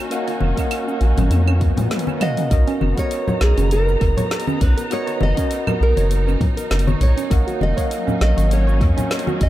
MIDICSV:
0, 0, Header, 1, 8, 480
1, 0, Start_track
1, 0, Tempo, 600000
1, 87, Time_signature, 4, 2, 24, 8
1, 7593, End_track
2, 0, Start_track
2, 0, Title_t, "Nylon-string guitar"
2, 0, Program_c, 0, 24
2, 1779, Note_on_c, 0, 75, 118
2, 2389, Note_off_c, 0, 75, 0
2, 2392, Note_on_c, 0, 73, 103
2, 2710, Note_off_c, 0, 73, 0
2, 2742, Note_on_c, 0, 68, 92
2, 2976, Note_off_c, 0, 68, 0
2, 2980, Note_on_c, 0, 70, 94
2, 3508, Note_off_c, 0, 70, 0
2, 3508, Note_on_c, 0, 68, 94
2, 3697, Note_off_c, 0, 68, 0
2, 3700, Note_on_c, 0, 71, 95
2, 3917, Note_off_c, 0, 71, 0
2, 3944, Note_on_c, 0, 73, 100
2, 4181, Note_off_c, 0, 73, 0
2, 4184, Note_on_c, 0, 75, 101
2, 4661, Note_on_c, 0, 70, 98
2, 4670, Note_off_c, 0, 75, 0
2, 5623, Note_on_c, 0, 73, 101
2, 5643, Note_off_c, 0, 70, 0
2, 6101, Note_off_c, 0, 73, 0
2, 6104, Note_on_c, 0, 75, 104
2, 6544, Note_off_c, 0, 75, 0
2, 6579, Note_on_c, 0, 75, 99
2, 6820, Note_off_c, 0, 75, 0
2, 6823, Note_on_c, 0, 73, 95
2, 7503, Note_off_c, 0, 73, 0
2, 7543, Note_on_c, 0, 75, 97
2, 7593, Note_off_c, 0, 75, 0
2, 7593, End_track
3, 0, Start_track
3, 0, Title_t, "Tine electric piano"
3, 0, Program_c, 1, 4
3, 0, Control_c, 1, 64, 127
3, 0, Note_on_c, 1, 58, 76
3, 0, Note_on_c, 1, 70, 70
3, 0, Note_on_c, 1, 73, 68
3, 0, Note_on_c, 1, 75, 70
3, 0, Note_on_c, 1, 77, 67
3, 0, Note_on_c, 1, 78, 83
3, 81, Note_off_c, 1, 58, 0
3, 81, Note_on_c, 1, 58, 80
3, 85, Note_off_c, 1, 70, 0
3, 85, Note_on_c, 1, 70, 72
3, 90, Note_off_c, 1, 73, 0
3, 90, Note_on_c, 1, 73, 76
3, 93, Note_off_c, 1, 75, 0
3, 93, Note_on_c, 1, 75, 74
3, 96, Note_off_c, 1, 77, 0
3, 96, Note_on_c, 1, 77, 73
3, 101, Note_off_c, 1, 78, 0
3, 101, Note_on_c, 1, 78, 87
3, 425, Note_off_c, 1, 58, 0
3, 427, Note_off_c, 1, 70, 0
3, 429, Note_off_c, 1, 73, 0
3, 431, Note_off_c, 1, 75, 0
3, 432, Note_off_c, 1, 77, 0
3, 435, Note_off_c, 1, 78, 0
3, 443, Note_on_c, 1, 58, 79
3, 452, Note_on_c, 1, 70, 72
3, 460, Note_on_c, 1, 73, 69
3, 469, Note_on_c, 1, 75, 66
3, 476, Note_on_c, 1, 77, 66
3, 484, Note_on_c, 1, 78, 87
3, 1738, Note_off_c, 1, 58, 0
3, 1742, Note_off_c, 1, 70, 0
3, 1746, Note_off_c, 1, 73, 0
3, 1751, Note_off_c, 1, 75, 0
3, 1754, Note_off_c, 1, 77, 0
3, 1758, Note_off_c, 1, 78, 0
3, 1761, Note_on_c, 1, 58, 88
3, 1765, Note_on_c, 1, 70, 81
3, 1769, Note_on_c, 1, 73, 78
3, 1773, Note_on_c, 1, 75, 84
3, 1778, Note_on_c, 1, 77, 86
3, 1782, Note_on_c, 1, 78, 97
3, 1978, Note_off_c, 1, 58, 0
3, 1980, Note_off_c, 1, 70, 0
3, 1982, Note_off_c, 1, 73, 0
3, 1984, Note_off_c, 1, 75, 0
3, 1987, Note_off_c, 1, 77, 0
3, 1989, Note_off_c, 1, 78, 0
3, 2000, Note_on_c, 1, 59, 77
3, 2006, Note_on_c, 1, 66, 79
3, 2010, Note_on_c, 1, 70, 69
3, 2015, Note_on_c, 1, 73, 72
3, 2017, Control_c, 1, 64, 0
3, 2021, Note_on_c, 1, 75, 85
3, 2166, Control_c, 1, 64, 127
3, 2344, Note_off_c, 1, 59, 0
3, 2347, Note_off_c, 1, 66, 0
3, 2349, Note_off_c, 1, 70, 0
3, 2352, Note_off_c, 1, 73, 0
3, 2355, Note_off_c, 1, 75, 0
3, 2362, Note_on_c, 1, 59, 75
3, 2371, Note_on_c, 1, 66, 70
3, 2382, Note_on_c, 1, 70, 70
3, 2391, Note_on_c, 1, 73, 69
3, 2401, Note_on_c, 1, 75, 84
3, 3893, Note_off_c, 1, 59, 0
3, 3897, Note_off_c, 1, 66, 0
3, 3903, Note_off_c, 1, 70, 0
3, 3907, Note_off_c, 1, 73, 0
3, 3912, Note_off_c, 1, 75, 0
3, 3920, Note_on_c, 1, 59, 82
3, 3926, Note_on_c, 1, 66, 73
3, 3929, Note_on_c, 1, 70, 73
3, 3935, Note_on_c, 1, 73, 73
3, 3938, Note_on_c, 1, 75, 92
3, 4264, Note_off_c, 1, 59, 0
3, 4267, Note_off_c, 1, 66, 0
3, 4268, Note_off_c, 1, 70, 0
3, 4272, Note_off_c, 1, 73, 0
3, 4273, Note_off_c, 1, 75, 0
3, 4281, Note_on_c, 1, 59, 78
3, 4291, Note_on_c, 1, 66, 74
3, 4302, Note_on_c, 1, 70, 68
3, 4311, Note_on_c, 1, 73, 72
3, 4321, Note_on_c, 1, 75, 85
3, 5812, Note_off_c, 1, 59, 0
3, 5817, Note_off_c, 1, 66, 0
3, 5823, Note_off_c, 1, 70, 0
3, 5827, Note_off_c, 1, 73, 0
3, 5832, Note_off_c, 1, 75, 0
3, 5841, Note_on_c, 1, 58, 86
3, 5845, Note_on_c, 1, 70, 78
3, 5849, Note_on_c, 1, 73, 75
3, 5854, Note_on_c, 1, 75, 81
3, 5857, Note_on_c, 1, 77, 76
3, 5859, Control_c, 1, 64, 0
3, 5861, Note_on_c, 1, 78, 92
3, 6022, Control_c, 1, 64, 127
3, 6185, Note_off_c, 1, 58, 0
3, 6186, Note_off_c, 1, 70, 0
3, 6188, Note_off_c, 1, 73, 0
3, 6191, Note_off_c, 1, 75, 0
3, 6192, Note_off_c, 1, 77, 0
3, 6194, Note_off_c, 1, 78, 0
3, 6200, Note_on_c, 1, 58, 73
3, 6207, Note_on_c, 1, 70, 72
3, 6216, Note_on_c, 1, 73, 70
3, 6224, Note_on_c, 1, 75, 70
3, 6233, Note_on_c, 1, 77, 74
3, 6240, Note_on_c, 1, 78, 84
3, 7593, Note_off_c, 1, 58, 0
3, 7593, Note_off_c, 1, 70, 0
3, 7593, Note_off_c, 1, 73, 0
3, 7593, Note_off_c, 1, 75, 0
3, 7593, Note_off_c, 1, 77, 0
3, 7593, Note_off_c, 1, 78, 0
3, 7593, End_track
4, 0, Start_track
4, 0, Title_t, "String section"
4, 0, Program_c, 2, 48
4, 0, Note_on_c, 2, 61, 76
4, 0, Note_on_c, 2, 63, 84
4, 0, Note_on_c, 2, 66, 78
4, 1975, Note_off_c, 2, 63, 0
4, 1977, Note_off_c, 2, 66, 0
4, 1978, Note_off_c, 2, 61, 0
4, 2009, Note_on_c, 2, 63, 81
4, 2010, Note_on_c, 2, 59, 69
4, 2010, Note_on_c, 2, 82, 77
4, 5817, Note_off_c, 2, 59, 0
4, 5817, Note_off_c, 2, 82, 0
4, 5849, Note_on_c, 2, 54, 86
4, 5850, Note_on_c, 2, 61, 75
4, 7593, Note_off_c, 2, 54, 0
4, 7593, Note_off_c, 2, 61, 0
4, 7593, Note_off_c, 2, 63, 0
4, 7593, End_track
5, 0, Start_track
5, 0, Title_t, "Synth pluck"
5, 0, Program_c, 3, 84
5, 0, Note_on_c, 3, 61, 76
5, 81, Note_off_c, 3, 61, 0
5, 217, Note_on_c, 3, 61, 102
5, 321, Note_off_c, 3, 61, 0
5, 460, Note_on_c, 3, 61, 75
5, 557, Note_off_c, 3, 61, 0
5, 699, Note_on_c, 3, 61, 73
5, 802, Note_off_c, 3, 61, 0
5, 941, Note_on_c, 3, 61, 96
5, 1043, Note_off_c, 3, 61, 0
5, 1181, Note_on_c, 3, 61, 78
5, 1277, Note_off_c, 3, 61, 0
5, 1421, Note_on_c, 3, 61, 74
5, 1523, Note_off_c, 3, 61, 0
5, 1658, Note_on_c, 3, 61, 98
5, 1761, Note_off_c, 3, 61, 0
5, 1900, Note_on_c, 3, 61, 75
5, 1997, Note_off_c, 3, 61, 0
5, 2139, Note_on_c, 3, 61, 107
5, 2242, Note_off_c, 3, 61, 0
5, 2379, Note_on_c, 3, 70, 72
5, 2438, Note_off_c, 3, 70, 0
5, 2620, Note_on_c, 3, 73, 98
5, 2722, Note_off_c, 3, 73, 0
5, 2860, Note_on_c, 3, 61, 96
5, 2962, Note_off_c, 3, 61, 0
5, 3100, Note_on_c, 3, 70, 81
5, 3158, Note_off_c, 3, 70, 0
5, 3337, Note_on_c, 3, 73, 102
5, 3441, Note_off_c, 3, 73, 0
5, 3577, Note_on_c, 3, 61, 99
5, 3681, Note_off_c, 3, 61, 0
5, 3818, Note_on_c, 3, 70, 74
5, 3877, Note_off_c, 3, 70, 0
5, 4057, Note_on_c, 3, 73, 104
5, 4161, Note_off_c, 3, 73, 0
5, 4296, Note_on_c, 3, 61, 101
5, 4400, Note_off_c, 3, 61, 0
5, 4537, Note_on_c, 3, 70, 74
5, 4597, Note_off_c, 3, 70, 0
5, 4776, Note_on_c, 3, 73, 100
5, 4881, Note_off_c, 3, 73, 0
5, 5016, Note_on_c, 3, 61, 100
5, 5120, Note_off_c, 3, 61, 0
5, 5256, Note_on_c, 3, 70, 81
5, 5316, Note_off_c, 3, 70, 0
5, 5497, Note_on_c, 3, 73, 104
5, 5601, Note_off_c, 3, 73, 0
5, 5736, Note_on_c, 3, 61, 102
5, 5841, Note_off_c, 3, 61, 0
5, 5977, Note_on_c, 3, 66, 81
5, 6036, Note_off_c, 3, 66, 0
5, 6216, Note_on_c, 3, 73, 108
5, 6320, Note_off_c, 3, 73, 0
5, 6456, Note_on_c, 3, 61, 96
5, 6560, Note_off_c, 3, 61, 0
5, 6695, Note_on_c, 3, 66, 71
5, 6756, Note_off_c, 3, 66, 0
5, 6937, Note_on_c, 3, 73, 98
5, 7041, Note_off_c, 3, 73, 0
5, 7176, Note_on_c, 3, 61, 99
5, 7281, Note_off_c, 3, 61, 0
5, 7417, Note_on_c, 3, 66, 73
5, 7477, Note_off_c, 3, 66, 0
5, 7593, End_track
6, 0, Start_track
6, 0, Title_t, "Analog synth bass"
6, 0, Program_c, 4, 38
6, 326, Note_on_c, 4, 29, 72
6, 429, Note_off_c, 4, 29, 0
6, 807, Note_on_c, 4, 34, 84
6, 910, Note_off_c, 4, 34, 0
6, 940, Note_on_c, 4, 32, 88
6, 1041, Note_off_c, 4, 32, 0
6, 1046, Note_on_c, 4, 41, 93
6, 1371, Note_off_c, 4, 41, 0
6, 1419, Note_on_c, 4, 46, 101
6, 1503, Note_off_c, 4, 46, 0
6, 2009, Note_on_c, 4, 35, 102
6, 2111, Note_off_c, 4, 35, 0
6, 2249, Note_on_c, 4, 30, 69
6, 2351, Note_off_c, 4, 30, 0
6, 2729, Note_on_c, 4, 35, 81
6, 2830, Note_off_c, 4, 35, 0
6, 2859, Note_on_c, 4, 30, 94
6, 3169, Note_off_c, 4, 30, 0
6, 3209, Note_on_c, 4, 30, 90
6, 3310, Note_off_c, 4, 30, 0
6, 3688, Note_on_c, 4, 35, 98
6, 3790, Note_off_c, 4, 35, 0
6, 4167, Note_on_c, 4, 30, 81
6, 4270, Note_off_c, 4, 30, 0
6, 4647, Note_on_c, 4, 35, 85
6, 4749, Note_off_c, 4, 35, 0
6, 4778, Note_on_c, 4, 30, 90
6, 5088, Note_off_c, 4, 30, 0
6, 5367, Note_on_c, 4, 30, 81
6, 5559, Note_off_c, 4, 30, 0
6, 5607, Note_on_c, 4, 35, 112
6, 5710, Note_off_c, 4, 35, 0
6, 5848, Note_on_c, 4, 34, 97
6, 5950, Note_off_c, 4, 34, 0
6, 6087, Note_on_c, 4, 29, 72
6, 6190, Note_off_c, 4, 29, 0
6, 6568, Note_on_c, 4, 34, 87
6, 6670, Note_off_c, 4, 34, 0
6, 6700, Note_on_c, 4, 32, 93
6, 7048, Note_on_c, 4, 41, 85
6, 7060, Note_off_c, 4, 32, 0
6, 7150, Note_off_c, 4, 41, 0
6, 7528, Note_on_c, 4, 34, 89
6, 7593, Note_off_c, 4, 34, 0
6, 7593, End_track
7, 0, Start_track
7, 0, Title_t, "Swell"
7, 0, Program_c, 5, 103
7, 1048, Note_on_c, 5, 60, 77
7, 2008, Note_off_c, 5, 60, 0
7, 7593, End_track
8, 0, Start_track
8, 0, Title_t, "Drums"
8, 89, Note_on_c, 9, 46, 54
8, 96, Note_on_c, 9, 69, 55
8, 169, Note_off_c, 9, 46, 0
8, 176, Note_off_c, 9, 69, 0
8, 221, Note_on_c, 9, 46, 32
8, 228, Note_on_c, 9, 69, 33
8, 301, Note_off_c, 9, 46, 0
8, 308, Note_off_c, 9, 69, 0
8, 324, Note_on_c, 9, 63, 89
8, 404, Note_off_c, 9, 63, 0
8, 460, Note_on_c, 9, 36, 55
8, 460, Note_on_c, 9, 46, 45
8, 467, Note_on_c, 9, 69, 62
8, 540, Note_off_c, 9, 36, 0
8, 540, Note_off_c, 9, 46, 0
8, 547, Note_off_c, 9, 69, 0
8, 568, Note_on_c, 9, 46, 59
8, 568, Note_on_c, 9, 75, 75
8, 575, Note_on_c, 9, 69, 52
8, 648, Note_off_c, 9, 46, 0
8, 648, Note_off_c, 9, 75, 0
8, 655, Note_off_c, 9, 69, 0
8, 707, Note_on_c, 9, 69, 30
8, 787, Note_off_c, 9, 69, 0
8, 807, Note_on_c, 9, 46, 32
8, 887, Note_off_c, 9, 46, 0
8, 935, Note_on_c, 9, 63, 58
8, 941, Note_on_c, 9, 46, 42
8, 946, Note_on_c, 9, 64, 96
8, 947, Note_on_c, 9, 69, 59
8, 1015, Note_off_c, 9, 63, 0
8, 1021, Note_off_c, 9, 46, 0
8, 1026, Note_off_c, 9, 64, 0
8, 1027, Note_off_c, 9, 69, 0
8, 1046, Note_on_c, 9, 46, 57
8, 1046, Note_on_c, 9, 48, 58
8, 1053, Note_on_c, 9, 69, 49
8, 1126, Note_off_c, 9, 46, 0
8, 1126, Note_off_c, 9, 48, 0
8, 1133, Note_off_c, 9, 69, 0
8, 1180, Note_on_c, 9, 48, 52
8, 1180, Note_on_c, 9, 75, 76
8, 1187, Note_on_c, 9, 69, 30
8, 1260, Note_off_c, 9, 48, 0
8, 1260, Note_off_c, 9, 75, 0
8, 1267, Note_off_c, 9, 69, 0
8, 1288, Note_on_c, 9, 36, 101
8, 1289, Note_on_c, 9, 46, 34
8, 1368, Note_off_c, 9, 36, 0
8, 1369, Note_off_c, 9, 46, 0
8, 1417, Note_on_c, 9, 64, 94
8, 1421, Note_on_c, 9, 46, 43
8, 1421, Note_on_c, 9, 47, 62
8, 1428, Note_on_c, 9, 69, 61
8, 1497, Note_off_c, 9, 64, 0
8, 1501, Note_off_c, 9, 46, 0
8, 1501, Note_off_c, 9, 47, 0
8, 1508, Note_off_c, 9, 69, 0
8, 1528, Note_on_c, 9, 38, 75
8, 1528, Note_on_c, 9, 46, 41
8, 1528, Note_on_c, 9, 47, 80
8, 1535, Note_on_c, 9, 69, 52
8, 1594, Note_off_c, 9, 46, 0
8, 1594, Note_on_c, 9, 46, 55
8, 1608, Note_off_c, 9, 38, 0
8, 1608, Note_off_c, 9, 47, 0
8, 1615, Note_off_c, 9, 69, 0
8, 1656, Note_on_c, 9, 63, 83
8, 1666, Note_on_c, 9, 69, 31
8, 1674, Note_off_c, 9, 46, 0
8, 1736, Note_off_c, 9, 63, 0
8, 1746, Note_off_c, 9, 69, 0
8, 1768, Note_on_c, 9, 45, 99
8, 1768, Note_on_c, 9, 46, 63
8, 1768, Note_on_c, 9, 75, 82
8, 1848, Note_off_c, 9, 45, 0
8, 1848, Note_off_c, 9, 46, 0
8, 1848, Note_off_c, 9, 75, 0
8, 1899, Note_on_c, 9, 45, 78
8, 1899, Note_on_c, 9, 46, 45
8, 1906, Note_on_c, 9, 69, 61
8, 1979, Note_off_c, 9, 45, 0
8, 1979, Note_off_c, 9, 46, 0
8, 1986, Note_off_c, 9, 69, 0
8, 2008, Note_on_c, 9, 36, 116
8, 2009, Note_on_c, 9, 46, 57
8, 2015, Note_on_c, 9, 69, 57
8, 2088, Note_off_c, 9, 36, 0
8, 2089, Note_off_c, 9, 46, 0
8, 2095, Note_off_c, 9, 69, 0
8, 2140, Note_on_c, 9, 46, 33
8, 2147, Note_on_c, 9, 69, 35
8, 2220, Note_off_c, 9, 46, 0
8, 2227, Note_off_c, 9, 69, 0
8, 2249, Note_on_c, 9, 63, 86
8, 2329, Note_off_c, 9, 63, 0
8, 2380, Note_on_c, 9, 46, 44
8, 2381, Note_on_c, 9, 36, 62
8, 2387, Note_on_c, 9, 69, 64
8, 2460, Note_off_c, 9, 46, 0
8, 2461, Note_off_c, 9, 36, 0
8, 2467, Note_off_c, 9, 69, 0
8, 2488, Note_on_c, 9, 46, 55
8, 2495, Note_on_c, 9, 69, 56
8, 2568, Note_off_c, 9, 46, 0
8, 2575, Note_off_c, 9, 69, 0
8, 2621, Note_on_c, 9, 64, 97
8, 2627, Note_on_c, 9, 69, 30
8, 2701, Note_off_c, 9, 64, 0
8, 2707, Note_off_c, 9, 69, 0
8, 2728, Note_on_c, 9, 38, 84
8, 2808, Note_off_c, 9, 38, 0
8, 2860, Note_on_c, 9, 46, 45
8, 2863, Note_on_c, 9, 63, 61
8, 2867, Note_on_c, 9, 69, 64
8, 2940, Note_off_c, 9, 46, 0
8, 2943, Note_off_c, 9, 63, 0
8, 2947, Note_off_c, 9, 69, 0
8, 2969, Note_on_c, 9, 46, 59
8, 2976, Note_on_c, 9, 69, 57
8, 3049, Note_off_c, 9, 46, 0
8, 3056, Note_off_c, 9, 69, 0
8, 3107, Note_on_c, 9, 69, 33
8, 3187, Note_off_c, 9, 69, 0
8, 3208, Note_on_c, 9, 36, 105
8, 3209, Note_on_c, 9, 46, 34
8, 3288, Note_off_c, 9, 36, 0
8, 3289, Note_off_c, 9, 46, 0
8, 3339, Note_on_c, 9, 64, 87
8, 3342, Note_on_c, 9, 46, 44
8, 3348, Note_on_c, 9, 69, 64
8, 3419, Note_off_c, 9, 64, 0
8, 3422, Note_off_c, 9, 46, 0
8, 3428, Note_off_c, 9, 69, 0
8, 3450, Note_on_c, 9, 38, 81
8, 3450, Note_on_c, 9, 46, 43
8, 3456, Note_on_c, 9, 69, 52
8, 3517, Note_off_c, 9, 46, 0
8, 3517, Note_on_c, 9, 46, 52
8, 3530, Note_off_c, 9, 38, 0
8, 3536, Note_off_c, 9, 69, 0
8, 3578, Note_on_c, 9, 63, 94
8, 3587, Note_on_c, 9, 69, 35
8, 3597, Note_off_c, 9, 46, 0
8, 3658, Note_off_c, 9, 63, 0
8, 3667, Note_off_c, 9, 69, 0
8, 3688, Note_on_c, 9, 36, 102
8, 3689, Note_on_c, 9, 46, 62
8, 3768, Note_off_c, 9, 36, 0
8, 3769, Note_off_c, 9, 46, 0
8, 3821, Note_on_c, 9, 46, 47
8, 3828, Note_on_c, 9, 69, 65
8, 3901, Note_off_c, 9, 46, 0
8, 3908, Note_off_c, 9, 69, 0
8, 3928, Note_on_c, 9, 46, 54
8, 3935, Note_on_c, 9, 69, 59
8, 4008, Note_off_c, 9, 46, 0
8, 4015, Note_off_c, 9, 69, 0
8, 4060, Note_on_c, 9, 46, 31
8, 4067, Note_on_c, 9, 69, 34
8, 4140, Note_off_c, 9, 46, 0
8, 4147, Note_off_c, 9, 69, 0
8, 4165, Note_on_c, 9, 63, 100
8, 4245, Note_off_c, 9, 63, 0
8, 4298, Note_on_c, 9, 46, 46
8, 4300, Note_on_c, 9, 36, 66
8, 4305, Note_on_c, 9, 69, 67
8, 4378, Note_off_c, 9, 46, 0
8, 4380, Note_off_c, 9, 36, 0
8, 4385, Note_off_c, 9, 69, 0
8, 4406, Note_on_c, 9, 46, 56
8, 4413, Note_on_c, 9, 69, 55
8, 4486, Note_off_c, 9, 46, 0
8, 4493, Note_off_c, 9, 69, 0
8, 4537, Note_on_c, 9, 64, 91
8, 4538, Note_on_c, 9, 75, 60
8, 4545, Note_on_c, 9, 69, 34
8, 4617, Note_off_c, 9, 64, 0
8, 4618, Note_off_c, 9, 75, 0
8, 4625, Note_off_c, 9, 69, 0
8, 4773, Note_on_c, 9, 63, 72
8, 4778, Note_on_c, 9, 46, 42
8, 4784, Note_on_c, 9, 69, 67
8, 4853, Note_off_c, 9, 63, 0
8, 4858, Note_off_c, 9, 46, 0
8, 4864, Note_off_c, 9, 69, 0
8, 4887, Note_on_c, 9, 46, 56
8, 4894, Note_on_c, 9, 69, 54
8, 4967, Note_off_c, 9, 46, 0
8, 4974, Note_off_c, 9, 69, 0
8, 5027, Note_on_c, 9, 69, 33
8, 5107, Note_off_c, 9, 69, 0
8, 5125, Note_on_c, 9, 64, 79
8, 5127, Note_on_c, 9, 36, 107
8, 5129, Note_on_c, 9, 46, 31
8, 5205, Note_off_c, 9, 64, 0
8, 5207, Note_off_c, 9, 36, 0
8, 5209, Note_off_c, 9, 46, 0
8, 5260, Note_on_c, 9, 46, 43
8, 5266, Note_on_c, 9, 69, 67
8, 5340, Note_off_c, 9, 46, 0
8, 5346, Note_off_c, 9, 69, 0
8, 5368, Note_on_c, 9, 38, 83
8, 5368, Note_on_c, 9, 46, 43
8, 5375, Note_on_c, 9, 69, 53
8, 5434, Note_off_c, 9, 46, 0
8, 5434, Note_on_c, 9, 46, 58
8, 5448, Note_off_c, 9, 38, 0
8, 5455, Note_off_c, 9, 69, 0
8, 5502, Note_on_c, 9, 63, 103
8, 5507, Note_on_c, 9, 69, 34
8, 5514, Note_off_c, 9, 46, 0
8, 5582, Note_off_c, 9, 63, 0
8, 5587, Note_off_c, 9, 69, 0
8, 5607, Note_on_c, 9, 64, 76
8, 5608, Note_on_c, 9, 46, 57
8, 5687, Note_off_c, 9, 64, 0
8, 5688, Note_off_c, 9, 46, 0
8, 5741, Note_on_c, 9, 46, 45
8, 5748, Note_on_c, 9, 69, 67
8, 5821, Note_off_c, 9, 46, 0
8, 5828, Note_off_c, 9, 69, 0
8, 5846, Note_on_c, 9, 36, 122
8, 5850, Note_on_c, 9, 46, 58
8, 5856, Note_on_c, 9, 69, 61
8, 5926, Note_off_c, 9, 36, 0
8, 5930, Note_off_c, 9, 46, 0
8, 5936, Note_off_c, 9, 69, 0
8, 5982, Note_on_c, 9, 46, 29
8, 5989, Note_on_c, 9, 69, 37
8, 6062, Note_off_c, 9, 46, 0
8, 6069, Note_off_c, 9, 69, 0
8, 6089, Note_on_c, 9, 63, 88
8, 6169, Note_off_c, 9, 63, 0
8, 6219, Note_on_c, 9, 36, 62
8, 6222, Note_on_c, 9, 46, 42
8, 6229, Note_on_c, 9, 69, 71
8, 6299, Note_off_c, 9, 36, 0
8, 6302, Note_off_c, 9, 46, 0
8, 6309, Note_off_c, 9, 69, 0
8, 6330, Note_on_c, 9, 46, 54
8, 6336, Note_on_c, 9, 69, 60
8, 6410, Note_off_c, 9, 46, 0
8, 6416, Note_off_c, 9, 69, 0
8, 6462, Note_on_c, 9, 64, 81
8, 6468, Note_on_c, 9, 69, 35
8, 6542, Note_off_c, 9, 64, 0
8, 6548, Note_off_c, 9, 69, 0
8, 6570, Note_on_c, 9, 38, 80
8, 6650, Note_off_c, 9, 38, 0
8, 6699, Note_on_c, 9, 63, 69
8, 6702, Note_on_c, 9, 46, 45
8, 6709, Note_on_c, 9, 69, 70
8, 6779, Note_off_c, 9, 63, 0
8, 6782, Note_off_c, 9, 46, 0
8, 6789, Note_off_c, 9, 69, 0
8, 6810, Note_on_c, 9, 46, 54
8, 6817, Note_on_c, 9, 69, 56
8, 6890, Note_off_c, 9, 46, 0
8, 6897, Note_off_c, 9, 69, 0
8, 6950, Note_on_c, 9, 69, 34
8, 7030, Note_off_c, 9, 69, 0
8, 7047, Note_on_c, 9, 36, 119
8, 7050, Note_on_c, 9, 46, 30
8, 7127, Note_off_c, 9, 36, 0
8, 7130, Note_off_c, 9, 46, 0
8, 7181, Note_on_c, 9, 46, 41
8, 7186, Note_on_c, 9, 64, 82
8, 7188, Note_on_c, 9, 69, 69
8, 7261, Note_off_c, 9, 46, 0
8, 7266, Note_off_c, 9, 64, 0
8, 7268, Note_off_c, 9, 69, 0
8, 7288, Note_on_c, 9, 38, 80
8, 7288, Note_on_c, 9, 46, 39
8, 7294, Note_on_c, 9, 69, 56
8, 7353, Note_off_c, 9, 46, 0
8, 7353, Note_on_c, 9, 46, 51
8, 7368, Note_off_c, 9, 38, 0
8, 7374, Note_off_c, 9, 69, 0
8, 7418, Note_on_c, 9, 63, 92
8, 7426, Note_on_c, 9, 69, 34
8, 7433, Note_off_c, 9, 46, 0
8, 7498, Note_off_c, 9, 63, 0
8, 7506, Note_off_c, 9, 69, 0
8, 7527, Note_on_c, 9, 36, 109
8, 7527, Note_on_c, 9, 46, 57
8, 7593, Note_off_c, 9, 36, 0
8, 7593, Note_off_c, 9, 46, 0
8, 7593, End_track
0, 0, End_of_file